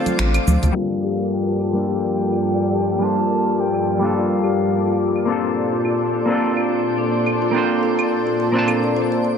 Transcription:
Already playing: D3 A3 C4 D4 F4 A4 D5 F5 D6
0.06 closed hi-hat, high conga, shaker
0.19 A1, finger snap, closed hi-hat, shaker
0.34 closed hi-hat, claves, shaker
0.47 D2, high conga, shaker
0.63 D2, closed hi-hat, low conga, shaker
0.72 G2 F3 G3 A#3 D4 F4 A4 D5 F5 D6
0.77 F4 A4
0.91 claves
1.04 G4
1.19 D5
1.33 G5
1.48 F4
1.60 F4, claves
1.73 G3 A#3 D4
1.78 F4 A4
1.88 G4
2.04 D5
2.33 F4, claves
2.45 F4
2.73 G4
2.89 D5
2.99 G3 A#3 D4, claves
3.03 F4 C5 A5
3.17 F4
3.30 F4
3.58 G4 G5
3.74 D5, claves
3.99 G3 A#3 D4 F4
4.04 F4 A4
4.15 F4 F5
4.43 G4, claves
4.59 D5
4.87 F4
5.00 F4
5.16 claves
5.25 A#2 A#3 C4 D4 A4 C5
5.30 F4 A4
5.44 D5
5.72 F4
5.85 F4, claves
6.13 A4
6.26 A#3 C4 D4 D5
6.30 F4 A4
6.57 F4, claves
6.70 F4
6.98 A4
7.14 D5
7.26 claves
7.42 F4
7.51 A#3 C4 D4
7.56 F4 C5
7.83 A4
7.99 D5, claves
8.27 F4
8.40 F4
8.52 A#3 C4 D4
8.57 F4 A5
8.68 A4, claves
8.84 D5
8.96 C5
9.12 D5
9.25 C5

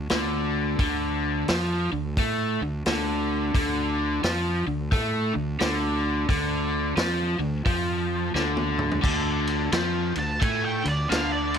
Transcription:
0.10 D2 D3, snare, open hi-hat
0.79 D2 D3, kick, open hi-hat
1.48 F2 F3, snare, open hi-hat
1.92 D2 D3
2.17 A2 A3, kick, open hi-hat
2.61 D2 D3
2.86 D2 D3, snare, open hi-hat
3.55 D2 D3, kick, open hi-hat
4.24 F2 F3, snare, open hi-hat
4.67 D2 D3
4.92 A2 A3, kick, open hi-hat
5.34 D2 D3
5.60 D2 D3, snare, open hi-hat
6.29 D2 D3, kick, open hi-hat
6.97 F2 F3, snare, open hi-hat
7.39 D2 D3
7.66 F2 F3, kick, open hi-hat
8.34 D2 D3, snare
8.57 high tom
8.79 mid tom
8.91 floor tom
9.02 D2 D3, kick, crash
9.47 ride
9.72 F2 F3, snare, ride
10.16 D2 D3 A5, ride
10.41 A2 A3 G#5, kick, ride
10.65 G5
10.84 D2 D3 D5, ride
11.10 D2 D3 F5, snare, ride
11.33 D5
11.54 ride

